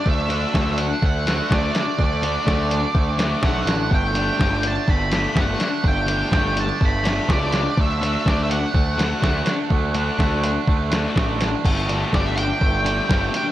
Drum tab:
CC |--------|--------|--------|--------|
HH |-x-x-x-x|-x-x-x-x|-x-x-x-x|-x-x-x-x|
SD |--o--ooo|--o--ooo|--o--ooo|--o--ooo|
BD |o-o-o-o-|o-o-o-o-|o-o-o-o-|o-o-o-o-|

CC |--------|--------|x-------|
HH |-x-x-x-x|-x-x-x-x|-x-x-x-x|
SD |--o--ooo|--o--ooo|--o---o-|
BD |o-o-o-o-|o-o-o-o-|o-o-o-o-|